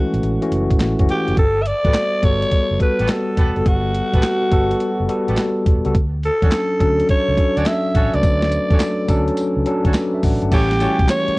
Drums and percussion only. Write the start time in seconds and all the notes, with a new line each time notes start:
0.14 closed hi-hat
0.23 closed hi-hat
0.42 closed hi-hat
0.52 closed hi-hat
0.71 kick, closed hi-hat
0.80 snare, clap, closed hi-hat
0.99 kick, closed hi-hat
1.09 closed hi-hat
1.28 closed hi-hat
1.37 kick, closed hi-hat
1.66 closed hi-hat
1.85 kick, closed hi-hat
1.94 snare, clap, closed hi-hat
2.23 kick, closed hi-hat
2.42 closed hi-hat
2.51 kick, closed hi-hat
2.80 kick, closed hi-hat
2.99 closed hi-hat
3.08 snare, clap, closed hi-hat
3.37 kick, closed hi-hat
3.56 closed hi-hat
3.66 kick, closed hi-hat
3.94 closed hi-hat
4.13 kick, closed hi-hat
4.23 snare, clap, closed hi-hat
4.52 kick, closed hi-hat
4.71 closed hi-hat
4.80 closed hi-hat
5.09 closed hi-hat
5.28 closed hi-hat
5.37 snare, clap, closed hi-hat
5.66 kick, closed hi-hat
5.85 closed hi-hat
5.95 kick, closed hi-hat
6.23 closed hi-hat
6.42 kick, closed hi-hat
6.51 snare, clap, closed hi-hat
6.80 kick, closed hi-hat
6.99 closed hi-hat
7.09 kick, closed hi-hat
7.37 kick, closed hi-hat
7.57 closed hi-hat
7.66 snare, clap, closed hi-hat
7.95 kick, closed hi-hat
8.13 closed hi-hat
8.23 kick, closed hi-hat, tambourine
8.42 snare
8.52 closed hi-hat, tambourine
8.71 kick, closed hi-hat
8.80 snare, clap, closed hi-hat, tambourine
9.09 kick, closed hi-hat, tambourine
9.28 closed hi-hat
9.37 closed hi-hat, tambourine
9.66 closed hi-hat
9.85 kick, closed hi-hat
9.94 snare, clap, closed hi-hat, tambourine
10.23 kick, open hi-hat, tambourine
10.42 closed hi-hat
10.52 kick, closed hi-hat, crash, tambourine
10.71 snare, closed hi-hat
10.80 closed hi-hat, tambourine
10.99 kick, closed hi-hat
11.09 snare, clap, closed hi-hat, tambourine
11.28 closed hi-hat